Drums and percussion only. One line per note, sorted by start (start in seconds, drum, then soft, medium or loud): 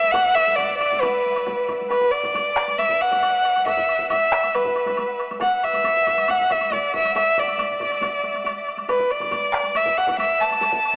0.04 taiko high medium
0.14 taiko loud
0.14 taiko low-mid medium
0.14 taiko mid medium
0.14 taiko high medium
0.14 high woodblock medium
0.25 taiko low-mid medium
0.25 taiko mid medium
0.36 taiko low-mid medium
0.36 taiko mid medium
0.36 high woodblock soft
0.47 taiko low-mid medium
0.47 taiko mid medium
0.47 taiko high soft
0.58 taiko low-mid medium
0.58 taiko mid medium
0.58 taiko high medium
0.58 high woodblock soft
0.69 taiko low-mid medium
0.69 taiko mid medium
0.80 taiko low-mid medium
0.80 taiko mid medium
0.80 high woodblock soft
0.92 taiko low-mid medium
0.92 taiko mid medium
0.92 taiko high medium
1.02 taiko medium
1.02 taiko low-mid loud
1.02 taiko mid medium
1.02 taiko high medium
1.02 high woodblock medium
1.26 taiko high soft
1.36 taiko high medium
1.36 high woodblock soft
1.47 taiko low-mid medium
1.47 taiko mid medium
1.47 taiko high medium
1.47 high woodblock soft
1.69 taiko low-mid medium
1.69 taiko mid medium
1.69 high woodblock soft
1.81 taiko high medium
1.91 taiko medium
1.91 taiko high medium
1.91 high woodblock soft
2.01 taiko low-mid medium
2.01 taiko mid medium
2.13 high woodblock soft
2.24 taiko low-mid medium
2.24 taiko mid medium
2.24 taiko high soft
2.24 high woodblock soft
2.35 taiko low-mid medium
2.35 taiko mid medium
2.35 taiko high medium
2.35 high woodblock soft
2.56 taiko rim medium
2.56 high woodblock soft
2.68 taiko high soft
2.68 high woodblock soft
2.79 taiko high medium
2.79 high woodblock soft
2.89 taiko low-mid medium
2.89 taiko mid medium
3.01 taiko medium
3.01 high woodblock soft
3.11 taiko low-mid medium
3.11 taiko mid medium
3.11 taiko high soft
3.11 high woodblock soft
3.23 taiko high medium
3.23 high woodblock soft
3.44 high woodblock soft
3.56 taiko high soft
3.56 high woodblock soft
3.66 taiko medium
3.66 taiko high medium
3.66 high woodblock soft
3.77 taiko low-mid medium
3.77 taiko mid medium
3.89 high woodblock soft
3.99 taiko low-mid medium
3.99 taiko mid medium
3.99 taiko high soft
4.10 taiko low-mid medium
4.10 taiko mid medium
4.10 taiko high medium
4.10 high woodblock medium
4.32 taiko rim medium
4.32 high woodblock soft
4.43 taiko high soft
4.43 high woodblock soft
4.55 taiko high medium
4.55 high woodblock medium
4.65 taiko low-mid medium
4.65 taiko mid medium
4.76 taiko medium
4.76 high woodblock soft
4.86 taiko low-mid medium
4.86 taiko mid medium
4.86 taiko high medium
4.86 high woodblock soft
4.97 taiko high medium
4.97 high woodblock medium
5.20 high woodblock soft
5.31 taiko high medium
5.31 high woodblock soft
5.41 taiko loud
5.41 taiko low-mid medium
5.41 taiko mid medium
5.41 taiko high medium
5.41 high woodblock medium
5.63 taiko low-mid medium
5.63 taiko mid medium
5.63 high woodblock soft
5.74 taiko low-mid medium
5.74 taiko mid medium
5.74 taiko high medium
5.74 high woodblock soft
5.84 taiko low-mid medium
5.84 taiko mid medium
5.84 taiko high medium
5.84 high woodblock medium
5.96 taiko low-mid medium
5.96 taiko mid medium
6.07 taiko low-mid medium
6.07 taiko mid medium
6.07 high woodblock soft
6.18 taiko high medium
6.18 high woodblock soft
6.28 taiko low-mid medium
6.28 taiko mid medium
6.28 taiko high medium
6.28 high woodblock medium
6.40 taiko low-mid medium
6.40 taiko mid medium
6.50 taiko medium
6.50 taiko low-mid medium
6.50 taiko mid medium
6.50 high woodblock soft
6.61 taiko high medium
6.61 high woodblock soft
6.72 taiko low-mid medium
6.72 taiko mid medium
6.72 taiko high medium
6.72 high woodblock medium
6.94 taiko low-mid medium
6.94 taiko mid loud
6.94 high woodblock soft
7.04 taiko high medium
7.04 high woodblock soft
7.15 taiko loud
7.15 taiko high medium
7.15 high woodblock medium
7.38 taiko low-mid medium
7.38 taiko mid medium
7.38 high woodblock soft
7.48 taiko high medium
7.48 high woodblock soft
7.58 taiko low-mid medium
7.58 taiko mid medium
7.58 taiko high medium
7.58 high woodblock medium
7.70 taiko low-mid medium
7.70 taiko mid medium
7.80 taiko low-mid medium
7.80 taiko mid medium
7.80 high woodblock soft
7.91 taiko high soft
7.91 high woodblock soft
8.01 taiko medium
8.01 taiko low-mid medium
8.01 taiko mid medium
8.01 taiko high medium
8.01 high woodblock medium
8.23 taiko medium
8.23 taiko high soft
8.23 high woodblock soft
8.34 taiko high medium
8.34 high woodblock soft
8.44 taiko high medium
8.44 high woodblock medium
8.68 high woodblock soft
8.78 taiko high soft
8.78 high woodblock soft
8.89 taiko loud
8.89 taiko high medium
8.89 high woodblock medium
8.99 taiko low-mid medium
8.99 taiko mid medium
9.11 high woodblock soft
9.21 taiko low-mid medium
9.21 taiko mid medium
9.21 taiko high soft
9.21 high woodblock soft
9.32 taiko low-mid medium
9.32 taiko mid medium
9.32 taiko high medium
9.32 high woodblock medium
9.53 taiko rim medium
9.53 high woodblock soft
9.64 taiko high soft
9.64 high woodblock soft
9.75 taiko high medium
9.75 high woodblock medium
9.86 taiko low-mid loud
9.86 taiko mid medium
9.97 taiko medium
9.97 high woodblock soft
10.07 taiko low-mid loud
10.07 taiko mid medium
10.07 taiko high soft
10.07 high woodblock soft
10.18 taiko high medium
10.18 high woodblock medium
10.42 high woodblock soft
10.51 taiko high medium
10.51 high woodblock soft
10.61 taiko loud
10.61 taiko high medium
10.61 high woodblock medium
10.73 taiko low-mid medium
10.73 taiko mid medium
10.85 high woodblock soft